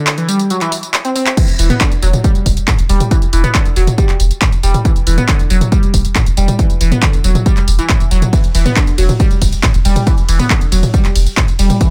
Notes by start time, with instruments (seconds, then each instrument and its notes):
0.07 clap, closed hi-hat, tambourine
0.18 analog synth lead E3, closed hi-hat, tambourine
0.29 analog synth lead G3, open hi-hat, tambourine
0.39 closed hi-hat, tambourine
0.50 analog synth lead F#3, closed hi-hat, tambourine
0.61 analog synth lead E3, clap, closed hi-hat, tambourine
0.72 open hi-hat, tambourine
0.83 closed hi-hat, tambourine
0.94 clap, closed hi-hat, tambourine
1.05 analog synth lead C4, closed hi-hat, tambourine
1.16 analog synth lead C4, open hi-hat, tambourine
1.26 clap, closed hi-hat, tambourine
1.37 analog synth lead E3, kick, closed hi-hat, crash, tambourine
1.48 sub bass E1, closed hi-hat, tambourine
1.59 sub bass E1, analog synth lead E3, open hi-hat, tambourine
1.70 analog synth lead B3, closed hi-hat, mid tom, tambourine
1.81 analog synth lead D3, kick, clap, closed hi-hat, tambourine
1.92 sub bass E1, closed hi-hat, tambourine
2.02 sub bass E1, analog synth lead F#3, open hi-hat, tambourine
2.13 closed hi-hat, mid tom, tambourine
2.24 analog synth lead G3, kick, closed hi-hat, tambourine
2.35 sub bass E1, closed hi-hat, tambourine
2.46 sub bass E1, kick, open hi-hat, tambourine
2.57 closed hi-hat, tambourine
2.68 kick, clap, closed hi-hat, mid tom, tambourine
2.79 sub bass E1, closed hi-hat, tambourine
2.89 sub bass E1, analog synth lead G3, open hi-hat, tambourine
3.00 closed hi-hat, mid tom, tambourine
3.11 analog synth lead E3, kick, closed hi-hat, tambourine
3.22 sub bass E1, closed hi-hat, tambourine
3.33 sub bass E1, analog synth lead E3, open hi-hat, tambourine
3.44 analog synth lead B3, closed hi-hat, mid tom, tambourine
3.55 analog synth lead D3, kick, clap, closed hi-hat, tambourine
3.65 sub bass E1, closed hi-hat, tambourine
3.76 sub bass E1, analog synth lead F#3, open hi-hat, tambourine
3.87 closed hi-hat, mid tom, tambourine
3.98 analog synth lead G3, kick, closed hi-hat, tambourine
4.09 sub bass E1, clap, closed hi-hat, tambourine
4.20 sub bass E1, open hi-hat, tambourine
4.31 closed hi-hat, tambourine
4.42 kick, clap, closed hi-hat, mid tom, tambourine
4.52 sub bass E1, closed hi-hat, tambourine
4.63 sub bass E1, analog synth lead G3, open hi-hat, tambourine
4.74 closed hi-hat, mid tom, tambourine
4.85 analog synth lead E3, kick, closed hi-hat, tambourine
4.96 sub bass E1, closed hi-hat, tambourine
5.07 sub bass E1, analog synth lead E3, open hi-hat, tambourine
5.18 analog synth lead B3, closed hi-hat, mid tom, tambourine
5.29 analog synth lead D3, kick, clap, closed hi-hat, tambourine
5.39 sub bass E1, closed hi-hat, tambourine
5.50 sub bass E1, analog synth lead F#3, open hi-hat, tambourine
5.61 closed hi-hat, mid tom, tambourine
5.72 analog synth lead G3, kick, closed hi-hat, tambourine
5.83 sub bass E1, closed hi-hat, tambourine
5.94 sub bass E1, kick, open hi-hat, tambourine
6.05 closed hi-hat, tambourine
6.15 kick, clap, closed hi-hat, mid tom, tambourine
6.26 sub bass E1, closed hi-hat, tambourine
6.37 sub bass E1, analog synth lead G3, open hi-hat, tambourine
6.48 closed hi-hat, mid tom, tambourine
6.59 analog synth lead E3, kick, closed hi-hat, tambourine
6.70 sub bass E1, closed hi-hat, tambourine
6.81 sub bass E1, analog synth lead E3, open hi-hat, tambourine
6.92 analog synth lead B3, closed hi-hat, mid tom, tambourine
7.02 analog synth lead D3, kick, clap, closed hi-hat, tambourine
7.13 sub bass E1, closed hi-hat, tambourine
7.24 sub bass E1, analog synth lead F#3, open hi-hat, tambourine
7.35 closed hi-hat, mid tom, tambourine
7.46 analog synth lead G3, kick, closed hi-hat, tambourine
7.57 sub bass E1, clap, closed hi-hat, tambourine
7.68 sub bass E1, open hi-hat, tambourine
7.79 analog synth lead E3, closed hi-hat, tambourine
7.89 analog synth lead E3, kick, clap, closed hi-hat, mid tom, tambourine
8.00 sub bass E1, closed hi-hat, tambourine
8.11 sub bass E1, analog synth lead F#3, open hi-hat, tambourine
8.22 closed hi-hat, mid tom, tambourine
8.33 analog synth lead E3, kick, closed hi-hat, ride, tambourine
8.44 sub bass E1, closed hi-hat, tambourine
8.55 sub bass E1, analog synth lead E3, open hi-hat, ride, tambourine
8.65 analog synth lead B3, closed hi-hat, mid tom, tambourine
8.76 analog synth lead D3, kick, clap, closed hi-hat, ride, tambourine
8.87 sub bass E1, closed hi-hat, tambourine
8.98 sub bass E1, analog synth lead F#3, open hi-hat, ride, tambourine
9.09 closed hi-hat, mid tom, tambourine
9.20 analog synth lead G3, kick, closed hi-hat, ride, tambourine
9.31 sub bass E1, closed hi-hat, tambourine
9.42 sub bass E1, kick, open hi-hat, ride, tambourine
9.52 closed hi-hat, tambourine
9.63 kick, clap, closed hi-hat, mid tom, ride, tambourine
9.74 sub bass E1, closed hi-hat, tambourine
9.85 sub bass E1, analog synth lead G3, open hi-hat, ride, tambourine
9.96 closed hi-hat, mid tom, tambourine
10.07 analog synth lead E3, kick, closed hi-hat, ride, tambourine
10.18 sub bass E1, closed hi-hat, tambourine
10.29 sub bass E1, analog synth lead E3, open hi-hat, ride, tambourine
10.39 analog synth lead B3, closed hi-hat, mid tom, tambourine
10.50 analog synth lead D3, kick, clap, closed hi-hat, ride, tambourine
10.61 sub bass E1, closed hi-hat, tambourine
10.72 sub bass E1, analog synth lead F#3, open hi-hat, ride, tambourine
10.83 closed hi-hat, mid tom, tambourine
10.94 analog synth lead G3, kick, closed hi-hat, ride, tambourine
11.05 sub bass E1, clap, closed hi-hat, tambourine
11.16 sub bass E1, open hi-hat, ride, tambourine
11.26 closed hi-hat, tambourine
11.37 kick, clap, closed hi-hat, mid tom, tambourine
11.48 sub bass E1, closed hi-hat, tambourine
11.59 sub bass E1, analog synth lead G3, open hi-hat, ride, tambourine
11.70 closed hi-hat, mid tom, tambourine
11.81 analog synth lead E3, kick, closed hi-hat, ride, tambourine